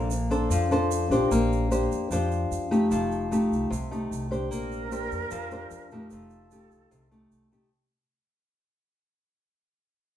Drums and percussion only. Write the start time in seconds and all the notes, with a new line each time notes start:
0.11 shaker
0.31 shaker
0.51 shaker
0.71 shaker
0.91 shaker
1.11 shaker
1.32 shaker
1.53 shaker
1.72 shaker
1.92 shaker
2.11 shaker
2.31 shaker
2.52 shaker
2.72 shaker
2.91 shaker
3.12 shaker
3.32 shaker
3.53 shaker
3.73 shaker
3.92 shaker
4.12 shaker
4.32 shaker
4.52 shaker
4.72 shaker
4.92 shaker
5.12 shaker
5.31 shaker
5.51 shaker
5.71 shaker
5.91 shaker
6.10 shaker
6.30 shaker
6.51 shaker
6.71 shaker
6.92 shaker
7.12 shaker
7.32 shaker
7.52 shaker